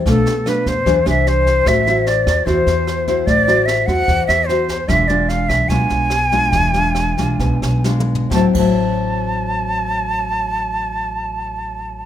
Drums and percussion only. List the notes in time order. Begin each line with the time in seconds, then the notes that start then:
0.06 kick, snare
0.26 snare
0.46 cross-stick, snare
0.66 kick, snare
0.86 kick, snare
1.06 cross-stick, snare
1.27 snare
1.46 kick, snare
1.66 kick, cross-stick, snare
1.87 snare
2.06 snare
2.27 kick, cross-stick, snare
2.47 kick, snare
2.67 snare
2.87 cross-stick, snare
3.07 kick, snare
3.27 kick, snare
3.48 snare
3.68 cross-stick, snare
3.88 kick, snare
4.08 kick, snare
4.29 cross-stick, snare
4.49 snare
4.68 kick, snare
4.89 kick, cross-stick, snare
5.09 snare
5.29 snare
5.49 kick, cross-stick, snare
5.69 kick, snare
5.89 snare
6.10 cross-stick, snare
6.31 kick, snare
6.52 kick, snare
6.73 snare
6.95 cross-stick, snare
7.17 kick, snare
7.39 kick, snare
7.62 cross-stick, snare
7.84 snare
8.00 mid tom
8.15 floor tom
8.31 kick, snare
8.54 kick, crash